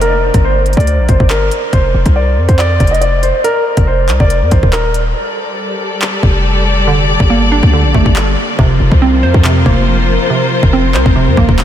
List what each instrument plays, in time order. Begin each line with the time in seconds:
Already playing: 808-style bass F1
0.01 grand piano A#4, closed hi-hat
0.34 808-style bass G1, kick, closed hi-hat
0.45 grand piano C5
0.66 closed hi-hat
0.73 grand piano D5, closed hi-hat
0.77 808-style bass D2, kick, closed hi-hat
0.87 closed hi-hat
0.99 808-style bass A#1
1.09 808-style bass G1, grand piano C5, kick, closed hi-hat
1.20 808-style bass G1, kick
1.30 grand piano A#4, clap
1.51 closed hi-hat
1.73 808-style bass F1, grand piano C5, kick, closed hi-hat
1.94 808-style bass F1
2.06 808-style bass C2, kick, closed hi-hat
2.16 grand piano D5
2.37 808-style bass F2
2.48 808-style bass F2, grand piano C5, kick, closed hi-hat
2.59 grand piano D5, clap
2.80 808-style bass F1, kick, closed hi-hat
2.87 grand piano D#5, closed hi-hat
2.94 closed hi-hat
3.01 grand piano D5, closed hi-hat
3.23 grand piano C5, closed hi-hat
3.44 grand piano A#4, closed hi-hat
3.77 808-style bass F1, kick, closed hi-hat
3.87 grand piano C5
4.09 808-style bass C2, clap, closed hi-hat
4.20 808-style bass F1, grand piano D5, kick
4.30 closed hi-hat
4.42 808-style bass F2
4.51 808-style bass A1, grand piano C5, kick, closed hi-hat
4.63 808-style bass D#1, kick
4.73 grand piano A#4, clap
4.94 closed hi-hat
5.16 string section G3 G4 A4 D5
6.02 clap
6.23 808-style bass F1, kick
6.87 synth pluck D3
7.20 808-style bass G1, kick
7.30 synth pluck A#3
7.52 synth pluck D4
7.63 808-style bass D2, kick
7.73 synth pluck D3
7.84 808-style bass A#1
7.94 808-style bass G1, synth pluck A3, kick
8.06 808-style bass G1, kick
8.16 clap
8.59 808-style bass F1, synth pluck C3, string section F3 F4 A#4 C5, kick
8.80 808-style bass F1
8.92 808-style bass C2, kick
9.02 synth pluck C4
9.23 808-style bass F2, synth pluck C5
9.34 808-style bass F2, kick
9.45 synth pluck C3, clap
9.66 808-style bass F1, synth pluck A#3, kick
10.30 synth pluck C3
10.63 808-style bass F1, kick
10.73 synth pluck C4
10.94 808-style bass C2, synth pluck C5, clap
11.06 808-style bass F1, kick
11.16 synth pluck C3
11.27 808-style bass F2
11.37 808-style bass A1, synth pluck A#3, kick
11.49 808-style bass D#1, kick
11.59 clap